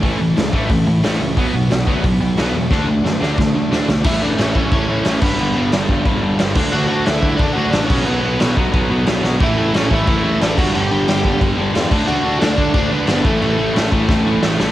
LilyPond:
<<
  \new Staff \with { instrumentName = "Overdriven electric guitar" } { \time 4/4 \key d \lydian \tempo 4 = 179 r1 | r1 | r1 | \key a \mixolydian <e' e''>8 <d' d''>8 <cis' cis''>8 <cis' cis''>8 <cis' cis''>4. <b b'>8~ |
<b b'>4 r2. | <fis' fis''>8 <fis' fis''>8 <e' e''>4 <d' d''>8 <fis' fis''>8 <d' d''>8 <cis' cis''>8 | <b b'>8 <b b'>4 r2 r8 | <e' e''>4 <cis' cis''>8 <e' e''>4. <d' d''>8 <fis' fis''>8 |
<g' g''>4 <g' g''>4 r2 | <fis' fis''>4 <d' d''>4 <d' d''>8 <b b'>4 <a a'>8~ | <a a'>2. r4 | }
  \new Staff \with { instrumentName = "Distorted electric guitar" } { \clef bass \time 4/4 \key d \lydian <a, e a>8 <a, e a>8 <a, e a>8 <a, e a>8 <a, e a>8 <a, e a>8 <a, e a>8 <a, e a>8 | <b, fis b>8 <b, fis b>8 <b, fis b>8 <b, fis b>8 <b, fis b>8 <b, fis b>8 <b, fis b>8 <b, fis b>8 | <d a d'>8 <d a d'>8 <d a d'>8 <d a d'>8 <d a d'>8 <d a d'>8 <d a d'>8 <d a d'>8 | \key a \mixolydian r1 |
r1 | r1 | r1 | <a, e a>8 <a, e a>8 <a, e a>8 <a, e a>8 <a, e a>8 <a, e a>8 <a, e a>8 <g, d g>8 |
<g, d g>8 <g, d g>8 <g, d g>8 <g, d g>8 <g, d g>8 <g, d g>8 <g, d g>8 <d a d'>8 | <d a d'>8 <d a d'>8 <d a d'>8 <d a d'>8 <d a d'>8 <d a d'>8 <d a d'>8 <a, e a>8 | <a, e a>8 <a, e a>8 <a, e a>8 <a, e a>8 <a, e a>8 <a, e a>8 <a, e a>8 <a, e a>8 | }
  \new Staff \with { instrumentName = "Overdriven electric guitar" } { \clef bass \time 4/4 \key d \lydian <a, e a>8 <a, e>8 <a, e>8 <a, e a>8 <a, e>8 <a, e>8 <a, e a>8 <a, e>8 | <b, fis b>8 <b, fis>8 <b, fis>8 <b, fis b>8 <b, fis>8 <b, fis>8 <b, fis b>8 <b, fis>8 | <d a d'>8 <d a>8 <d a>8 <d a d'>8 <d a>8 <d a>8 <d a d'>8 <d a>8 | \key a \mixolydian <a, e a>8 <a, e a>8 <a, e a>8 <a, e a>8 <a, e a>8 <a, e a>8 <a, e a>8 <g, d g>8 |
<g, d g>8 <g, d g>8 <g, d g>8 <g, d g>8 <g, d g>8 <g, d g>8 <g, d g>8 <d a d'>8 | <d a d'>8 <d a d'>8 <d a d'>8 <d a d'>8 <d a d'>8 <d a d'>8 <d a d'>8 <b, fis b>8 | <b, fis b>8 <b, fis b>8 <b, fis b>8 <b, fis b>8 <b, fis b>8 <b, fis b>8 <b, fis b>8 <b, fis b>8 | <a, e a>8 <a, e a>8 <a, e a>8 <a, e a>8 <a, e a>8 <a, e a>8 <a, e a>8 <g, d g>8 |
<g, d g>8 <g, d g>8 <g, d g>8 <g, d g>8 <g, d g>8 <g, d g>8 <g, d g>8 <d a d'>8 | <d a d'>8 <d a d'>8 <d a d'>8 <d a d'>8 <d a d'>8 <d a d'>8 <d a d'>8 <a, e a>8 | <a, e a>8 <a, e a>8 <a, e a>8 <a, e a>8 <a, e a>8 <a, e a>8 <a, e a>8 <a, e a>8 | }
  \new Staff \with { instrumentName = "Picked electric bass" } { \clef bass \time 4/4 \key d \lydian a,,8 a,,8 cis,8 a,,8 a,,8 a,8 a,,8 cis,8 | b,,8 b,,8 b,,8 d,8 b,,8 b,,8 b,,8 e,8 | d,8 d,8 fis,8 d,8 d,8 d8 d,8 b,,8 | \key a \mixolydian a,,4 a,,8 a,,8 a,,8 a,,8 a,,8 g,,8 |
g,,8 g,,8 g,,8 g,,8 g,,8 g,,8 g,,8 d,8 | d,4 d,8 d,8 d,8 d,8 a,,8 b,,8 | b,,8 b,,8 b,,8 b,,8 b,,8 b,,8 b,,8 b,,8 | a,,4 a,,8 a,,8 a,,8 a,,8 a,,8 g,,8 |
g,,8 g,,8 g,,8 g,,8 g,,8 g,,8 e,8 d,8 | d,4 d,8 d,8 d,8 d,8 g,,8 a,,8 | a,,8 a,,8 a,,8 a,,8 a,,8 a,,8 a,,8 a,,8 | }
  \new DrumStaff \with { instrumentName = "Drums" } \drummode { \time 4/4 <hho bd>4 <hho sn>8 bd8 <hho bd>4 <hho sn>4 | <hho bd>4 <hho sn>8 bd8 <hho bd>4 <hho sn>4 | <bd sn>4 sn8 sn8 <bd sn>4 sn8 sn8 | <cymc bd>4 <cymc sn>8 bd8 <cymc bd>4 <cymc sn>8 <cymc bd>8 |
cymc4 <cymc sn>8 bd8 <cymc bd>4 <cymc sn>8 <cymc bd>8 | cymc4 <cymc sn>8 bd8 <cymc bd>4 <cymc sn>8 <cymc bd>8 | cymc4 <cymc sn>8 bd8 <cymc bd>4 <cymc sn>8 sn8 | <cymc bd>4 <cymc sn>8 bd8 <cymc bd>4 <cymc sn>8 <cymc bd>8 |
cymc4 <cymc sn>8 bd8 <cymc bd>4 <cymc sn>8 <cymc bd>8 | cymc4 <cymc sn>8 bd8 <cymc bd>4 <cymc sn>8 bd8 | cymc4 <cymc sn>8 bd8 <bd sn>4 sn8 sn8 | }
>>